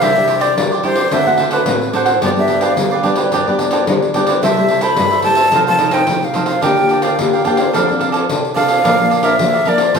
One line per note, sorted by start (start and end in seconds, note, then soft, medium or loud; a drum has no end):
0.01 0.55 C3 medium
0.01 0.10 G3 medium
0.01 0.10 D4 medium
0.01 0.27 E4 medium
0.01 0.11 E4 medium
0.01 0.27 G4 medium
0.01 0.28 C5 medium
0.01 0.29 D5 medium
0.01 0.43 E5 loud
0.01 pandeiro medium
0.16 0.53 G3 medium
0.16 0.53 D4 medium
0.16 0.53 E4 medium
0.16 pandeiro soft
0.28 0.39 E4 soft
0.28 0.39 G4 soft
0.28 0.40 C5 medium
0.28 0.40 D5 soft
0.28 pandeiro medium
0.40 0.50 E4 medium
0.40 0.51 G4 medium
0.40 0.51 C5 medium
0.40 0.84 D5 medium
0.40 0.51 D5 medium
0.40 pandeiro medium
0.56 0.73 G3 medium
0.56 0.73 D4 medium
0.56 0.74 E4 medium
0.56 pandeiro medium
0.71 0.83 G4 soft
0.71 0.84 C5 soft
0.71 0.83 D5 soft
0.71 pandeiro soft
0.83 1.02 G3 medium
0.83 1.02 D4 soft
0.83 0.97 E4 medium
0.83 1.02 E4 medium
0.83 0.97 G4 medium
0.83 1.14 C5 medium
0.83 0.97 C5 medium
0.83 0.95 D5 medium
0.83 pandeiro soft
0.96 1.12 G4 soft
0.96 1.11 C5 soft
0.96 1.10 D5 soft
0.96 pandeiro medium
1.11 1.64 D3 medium
1.11 1.21 A3 medium
1.11 1.21 C4 soft
1.11 1.25 D4 medium
1.11 1.22 F#4 medium
1.11 1.25 A4 medium
1.11 1.26 C5 medium
1.11 1.52 E5 medium
1.11 1.25 F#5 medium
1.11 pandeiro medium
1.26 1.63 A3 medium
1.26 1.63 C4 medium
1.26 1.64 F#4 medium
1.26 1.38 A4 soft
1.26 1.39 C5 soft
1.26 1.39 F#5 soft
1.26 pandeiro soft
1.38 1.50 D4 soft
1.38 1.51 A4 soft
1.38 1.51 C5 soft
1.38 1.52 F#5 soft
1.38 pandeiro medium
1.51 1.61 D4 medium
1.51 1.62 A4 medium
1.51 1.96 B4 medium
1.51 1.62 C5 medium
1.51 1.62 F#5 medium
1.51 pandeiro medium
1.66 2.20 A2 medium
1.66 1.90 A3 soft
1.66 1.90 C4 medium
1.66 1.91 F#4 medium
1.66 pandeiro medium
1.81 pandeiro soft
1.93 2.12 A3 soft
1.93 2.12 C4 soft
1.93 2.07 D4 medium
1.93 2.12 F#4 medium
1.93 2.06 A4 medium
1.93 2.22 C5 medium
1.93 2.05 C5 medium
1.93 2.04 F#5 medium
1.93 pandeiro medium
2.05 2.21 A4 soft
2.05 2.20 C5 soft
2.05 2.19 F#5 soft
2.05 pandeiro medium
2.22 2.75 G2 medium
2.22 2.32 G3 medium
2.22 2.32 B3 medium
2.22 2.47 D4 medium
2.22 2.32 D4 medium
2.22 2.48 G4 medium
2.22 2.49 B4 medium
2.22 2.30 D5 medium
2.22 2.50 D5 medium
2.22 pandeiro medium
2.36 2.73 G3 medium
2.36 2.73 B3 medium
2.36 2.74 D4 medium
2.36 2.64 E5 medium
2.36 pandeiro soft
2.48 2.60 D4 soft
2.48 2.60 G4 soft
2.48 2.61 B4 soft
2.48 2.62 D5 soft
2.48 pandeiro medium
2.61 2.71 D4 medium
2.61 2.72 G4 medium
2.61 2.72 B4 medium
2.61 2.72 D5 medium
2.61 3.19 F5 medium
2.61 pandeiro medium
2.77 3.30 D3 medium
2.77 2.94 G3 medium
2.77 2.94 B3 medium
2.77 2.94 D4 medium
2.77 pandeiro medium
2.91 3.03 G4 soft
2.91 3.04 B4 soft
2.91 3.04 D5 soft
2.91 pandeiro soft
3.03 3.30 G3 soft
3.03 3.30 B3 medium
3.03 3.17 D4 medium
3.03 3.31 D4 medium
3.03 3.17 G4 medium
3.03 3.16 B4 medium
3.03 3.15 D5 medium
3.03 pandeiro soft
3.16 3.31 G4 soft
3.16 3.31 B4 soft
3.16 3.30 D5 soft
3.16 pandeiro medium
3.32 3.85 G2 medium
3.32 3.45 D4 medium
3.32 3.46 G4 medium
3.32 3.46 B4 medium
3.32 3.46 D5 medium
3.32 pandeiro medium
3.47 3.84 G3 medium
3.47 3.84 B3 medium
3.47 3.84 D4 medium
3.47 3.58 G4 soft
3.47 3.59 B4 soft
3.47 3.60 D5 soft
3.47 pandeiro soft
3.59 3.71 D4 soft
3.59 3.71 G4 soft
3.59 3.72 B4 soft
3.59 3.72 D5 soft
3.59 pandeiro medium
3.71 3.82 D4 medium
3.71 3.82 G4 medium
3.71 3.82 B4 medium
3.71 3.83 D5 medium
3.71 pandeiro medium
3.87 4.40 D3 medium
3.87 4.04 G3 medium
3.87 4.04 B3 soft
3.87 4.04 D4 medium
3.87 pandeiro medium
4.02 pandeiro soft
4.14 4.40 G3 soft
4.14 4.41 B3 medium
4.14 4.27 D4 medium
4.14 4.41 D4 medium
4.14 4.28 G4 medium
4.14 4.28 B4 medium
4.14 4.26 D5 medium
4.14 pandeiro medium
4.27 4.42 G4 soft
4.27 4.42 B4 soft
4.27 4.41 D5 soft
4.27 pandeiro medium
4.43 4.96 C3 medium
4.43 4.51 G3 medium
4.43 4.52 A3 medium
4.43 4.68 E4 medium
4.43 4.52 E4 medium
4.43 4.69 A4 medium
4.43 4.69 C5 medium
4.43 4.84 E5 medium
4.43 4.70 E5 medium
4.43 pandeiro medium
4.57 4.94 G3 medium
4.57 4.94 A3 medium
4.57 4.94 E4 medium
4.57 pandeiro soft
4.68 4.80 E4 soft
4.68 4.82 A4 soft
4.68 4.82 C5 soft
4.68 4.82 E5 soft
4.68 pandeiro medium
4.81 4.92 E4 medium
4.81 4.93 A4 medium
4.81 4.93 C5 medium
4.81 4.93 E5 medium
4.81 5.23 B5 medium
4.81 pandeiro medium
4.96 5.51 G2 medium
4.96 5.15 G3 medium
4.96 5.15 A3 medium
4.96 5.15 E4 medium
4.96 pandeiro medium
5.10 5.23 A4 soft
5.10 5.25 C5 soft
5.10 5.24 E5 soft
5.10 pandeiro soft
5.22 5.51 G3 soft
5.22 5.51 A3 soft
5.22 5.37 E4 medium
5.22 5.37 A4 medium
5.22 5.36 C5 medium
5.22 5.35 E5 medium
5.22 5.63 A5 loud
5.22 pandeiro medium
5.26 5.51 E4 medium
5.35 5.52 A4 soft
5.35 5.51 C5 soft
5.35 5.51 E5 soft
5.35 pandeiro medium
5.52 6.06 C3 medium
5.52 5.61 F3 medium
5.52 5.62 A3 soft
5.52 5.66 D#4 medium
5.52 5.62 D#4 medium
5.52 5.66 A4 medium
5.52 5.67 C5 medium
5.52 5.66 F5 medium
5.52 pandeiro medium
5.67 6.05 F3 medium
5.67 6.05 A3 medium
5.67 6.05 D#4 medium
5.67 5.79 A4 soft
5.67 5.79 C5 soft
5.67 5.80 F5 soft
5.67 5.95 A5 medium
5.67 pandeiro soft
5.79 5.90 D#4 soft
5.79 5.91 A4 soft
5.79 5.91 C5 soft
5.79 5.91 F5 soft
5.79 pandeiro medium
5.91 6.02 D#4 medium
5.91 6.02 A4 medium
5.91 6.03 C5 medium
5.91 6.03 F5 medium
5.91 6.26 G5 medium
5.91 pandeiro medium
6.07 6.61 C3 medium
6.07 6.25 F3 soft
6.07 6.25 A3 medium
6.07 6.26 D#4 medium
6.07 pandeiro medium
6.22 6.47 F5 medium
6.22 pandeiro soft
6.34 6.54 F3 soft
6.34 6.54 A3 soft
6.34 6.48 D#4 medium
6.34 6.54 D#4 medium
6.34 6.48 A4 medium
6.34 6.47 C5 medium
6.34 6.45 F5 medium
6.34 pandeiro medium
6.46 6.62 A4 soft
6.46 6.62 C5 soft
6.46 6.61 F5 soft
6.46 6.61 F5 medium
6.46 pandeiro medium
6.61 7.16 D3 medium
6.61 6.72 A#3 medium
6.61 6.88 D4 medium
6.61 6.72 F4 medium
6.61 6.72 G4 medium
6.61 6.89 A#4 medium
6.61 6.89 D5 medium
6.61 7.04 G5 medium
6.61 6.90 G5 medium
6.61 pandeiro medium
6.77 7.15 A#3 medium
6.77 7.15 F4 medium
6.77 7.15 G4 medium
6.77 pandeiro soft
6.89 7.01 D4 soft
6.89 7.02 A#4 soft
6.89 7.02 D5 soft
6.89 7.03 G5 soft
6.89 pandeiro soft
7.02 7.13 D4 medium
7.02 7.13 A#4 medium
7.02 7.13 D5 medium
7.02 8.14 F5 medium
7.02 7.13 G5 medium
7.02 pandeiro medium
7.19 7.72 D3 medium
7.19 7.43 A#3 soft
7.19 7.43 F4 soft
7.19 7.43 G4 medium
7.19 pandeiro medium
7.33 7.44 A#4 soft
7.33 7.45 D5 soft
7.33 7.46 G5 soft
7.33 pandeiro soft
7.44 7.72 A#3 medium
7.44 7.58 D4 medium
7.44 7.72 F4 soft
7.44 7.72 G4 medium
7.44 7.59 A#4 medium
7.44 7.58 D5 medium
7.44 7.57 G5 medium
7.44 pandeiro soft
7.57 7.73 A#4 soft
7.57 7.73 D5 soft
7.57 7.72 G5 soft
7.57 pandeiro medium
7.73 8.27 F3 medium
7.73 7.84 C4 soft
7.73 7.86 D4 medium
7.73 7.84 D4 medium
7.73 7.86 A4 medium
7.73 7.85 A4 medium
7.73 7.87 D5 medium
7.73 7.86 F5 medium
7.73 pandeiro medium
7.87 8.26 C4 medium
7.87 8.26 D4 medium
7.87 7.98 A4 soft
7.87 8.26 A4 medium
7.87 8.00 D5 soft
7.87 8.00 F5 soft
7.87 pandeiro soft
7.99 8.11 D4 soft
7.99 8.11 A4 soft
7.99 8.12 D5 soft
7.99 8.12 F5 soft
7.99 pandeiro medium
8.12 8.23 D4 medium
8.12 8.23 A4 medium
8.12 8.23 D5 medium
8.12 8.23 F5 medium
8.12 pandeiro medium
8.29 8.82 C3 medium
8.29 8.46 C4 medium
8.29 8.46 D4 medium
8.29 8.46 A4 medium
8.29 pandeiro medium
8.45 pandeiro soft
8.54 8.82 C4 medium
8.54 8.68 D4 medium
8.54 8.82 D4 medium
8.54 8.69 A4 medium
8.54 8.82 A4 medium
8.54 8.68 D5 medium
8.54 9.26 F5 loud
8.54 8.66 F5 medium
8.54 pandeiro medium
8.68 8.83 A4 soft
8.68 8.83 D5 soft
8.68 8.82 F5 soft
8.68 pandeiro medium
8.84 9.37 A#2 medium
8.84 8.93 F3 medium
8.84 8.93 A#3 medium
8.84 9.09 D4 medium
8.84 8.93 D4 medium
8.84 9.09 A#4 medium
8.84 9.10 D5 medium
8.84 9.11 F5 medium
8.84 pandeiro medium
9.00 9.36 F3 medium
9.00 9.36 A#3 medium
9.00 9.36 D4 medium
9.00 pandeiro soft
9.10 9.21 D4 soft
9.10 9.22 A#4 soft
9.10 9.22 D5 soft
9.10 9.23 F5 soft
9.10 pandeiro medium
9.23 9.33 D4 medium
9.23 9.34 A#4 medium
9.23 9.34 D5 medium
9.23 9.70 E5 medium
9.23 9.34 F5 medium
9.23 pandeiro medium
9.39 9.65 F3 medium
9.39 9.56 A#3 medium
9.39 9.56 D4 medium
9.39 pandeiro medium
9.53 9.65 A#4 soft
9.53 9.66 D5 soft
9.53 9.66 F5 soft
9.53 pandeiro soft
9.65 9.92 F3 soft
9.65 9.92 A#3 medium
9.65 9.79 D4 medium
9.65 9.92 D4 medium
9.65 9.80 A#4 medium
9.65 9.79 D5 medium
9.65 9.95 D5 medium
9.65 9.78 F5 medium
9.65 pandeiro soft
9.78 9.94 A#4 soft
9.78 9.93 D5 soft
9.78 9.93 F5 soft
9.78 pandeiro medium
9.94 9.99 A2 medium
9.94 9.99 F3 medium
9.94 9.99 C4 soft
9.94 9.99 E4 medium
9.94 9.99 F4 medium
9.94 9.99 A4 medium
9.94 9.99 E5 medium
9.94 pandeiro medium